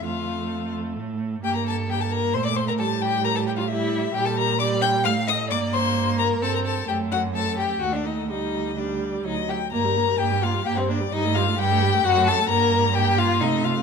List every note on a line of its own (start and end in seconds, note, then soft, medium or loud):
0.04 0.98 F2 medium
0.04 1.40 A3 medium
0.04 0.72 F4 medium
0.04 0.73 F5 medium
0.97 1.42 A2 medium
1.43 2.36 G2 medium
1.43 1.88 A#3 medium
1.43 1.56 G4 medium
1.43 1.54 G5 loud
1.55 1.66 A#4 medium
1.55 1.66 A#5 medium
1.66 1.91 A4 medium
1.66 1.75 A5 loud
1.89 2.36 A#3 medium
1.89 2.02 G4 loud
1.89 2.03 G5 loud
2.00 2.12 A4 medium
2.00 2.14 A5 medium
2.11 2.35 A#4 loud
2.11 2.35 A#5 loud
2.34 2.79 A#2 medium
2.34 2.81 A3 medium
2.34 2.44 C5 loud
2.34 2.45 C6 loud
2.45 2.50 D5 medium
2.45 2.58 D6 loud
2.56 2.61 C5 loud
2.56 2.67 C6 loud
2.68 2.73 A#4 medium
2.68 2.73 A#5 loud
2.79 4.12 A2 medium
2.79 3.70 G3 medium
2.79 2.87 A4 medium
2.79 3.03 A5 loud
3.02 3.23 G4 medium
3.02 3.26 G5 loud
3.24 3.29 A#4 loud
3.24 3.38 A#5 loud
3.35 3.40 A4 medium
3.35 3.46 A5 medium
3.47 3.52 G4 medium
3.47 3.51 G5 loud
3.57 3.62 F4 medium
3.57 3.70 F5 loud
3.68 4.14 G3 medium
3.68 4.13 E4 loud
3.68 4.16 E5 loud
4.14 5.07 A#2 medium
4.14 4.60 G3 medium
4.14 4.27 G4 loud
4.14 4.28 G5 loud
4.25 4.36 A4 medium
4.25 4.39 A5 loud
4.37 4.59 A#4 medium
4.37 4.59 A#5 loud
4.59 5.08 G3 medium
4.59 4.83 D5 loud
4.59 4.67 D6 loud
4.81 5.06 G5 loud
4.81 4.90 G6 loud
5.04 5.52 A2 medium
5.04 5.53 A3 medium
5.04 5.29 F5 loud
5.04 5.13 F6 loud
5.27 5.49 D#5 loud
5.27 5.36 D#6 loud
5.50 6.41 G2 medium
5.50 6.44 A#3 medium
5.50 5.75 D5 loud
5.50 5.59 D6 loud
5.73 6.18 C5 loud
5.73 6.18 C6 loud
6.19 6.43 A#4 loud
6.19 6.27 A#5 loud
6.42 6.87 G2 medium
6.42 6.87 C4 medium
6.42 6.55 A4 loud
6.42 6.54 A5 loud
6.54 6.66 A#4 medium
6.54 6.60 A#5 loud
6.65 6.88 A4 medium
6.65 6.88 A5 loud
6.88 7.77 F#2 medium
6.88 7.31 A3 medium
6.88 6.97 G4 medium
6.88 6.96 G5 medium
7.11 7.19 F#4 medium
7.11 7.20 F#5 loud
7.35 7.81 A3 medium
7.35 7.57 A4 medium
7.35 7.58 A5 loud
7.58 7.80 G4 medium
7.58 7.85 G5 medium
7.81 8.30 D#2 medium
7.81 8.31 A3 medium
7.81 7.94 F#4 medium
7.81 7.98 F#5 medium
7.93 8.06 D4 medium
7.93 8.08 D5 medium
8.05 8.29 D#4 medium
8.05 8.30 D#5 medium
8.28 9.24 D2 medium
8.28 8.76 G3 medium
8.28 8.76 D#4 medium
8.28 8.80 D#5 medium
8.77 9.26 G3 medium
8.77 9.24 D4 medium
8.77 9.25 D5 medium
9.24 9.51 D2 medium
9.24 9.52 F#3 medium
9.24 9.33 D#4 medium
9.24 9.51 D#5 loud
9.49 9.57 G4 medium
9.49 9.72 G5 loud
9.72 10.14 G2 medium
9.72 9.86 A#3 medium
9.72 10.21 A#4 loud
9.72 10.20 A#5 loud
9.85 9.97 G3 medium
9.96 10.09 A#3 medium
10.07 10.19 G3 medium
10.19 10.60 G2 medium
10.19 10.33 A#3 medium
10.19 10.45 G4 loud
10.19 10.45 G5 loud
10.32 10.44 G3 medium
10.43 10.56 A#3 medium
10.43 10.65 F4 medium
10.43 10.68 F5 loud
10.54 10.65 G3 medium
10.65 11.07 G2 medium
10.65 10.79 A#3 medium
10.65 10.76 G4 loud
10.65 10.81 G5 loud
10.77 10.90 G3 medium
10.77 10.89 C4 medium
10.77 10.92 C5 loud
10.89 11.02 A#3 medium
10.89 10.97 D4 medium
10.89 11.14 D5 loud
11.00 11.12 G3 medium
11.12 11.53 G2 loud
11.12 11.25 G3 medium
11.12 11.38 D#4 loud
11.12 11.37 D#5 loud
11.24 11.37 A3 medium
11.35 11.49 G3 medium
11.35 11.59 F4 loud
11.35 11.60 F5 loud
11.47 11.59 A3 medium
11.58 11.99 G2 loud
11.58 11.72 G3 medium
11.58 12.06 G4 loud
11.58 12.05 G5 loud
11.71 11.84 A3 medium
11.82 11.95 G3 medium
11.93 12.05 A3 medium
12.04 12.44 F#2 loud
12.04 12.19 F#3 medium
12.04 12.29 F#4 loud
12.04 12.26 F#5 loud
12.17 12.30 A3 medium
12.27 12.41 F#3 medium
12.27 12.49 A4 loud
12.27 12.48 A5 loud
12.40 12.50 A3 medium
12.49 13.42 G2 loud
12.49 12.92 A#3 medium
12.49 12.94 A#4 loud
12.49 12.97 A#5 loud
12.95 13.43 A#3 medium
12.95 13.20 G4 loud
12.95 13.20 G5 loud
13.18 13.42 F4 loud
13.18 13.43 F5 loud
13.41 13.83 C3 medium
13.41 13.83 A3 medium
13.41 13.65 D#4 loud
13.41 13.66 D#5 loud
13.64 13.83 F4 medium
13.64 13.83 F5 loud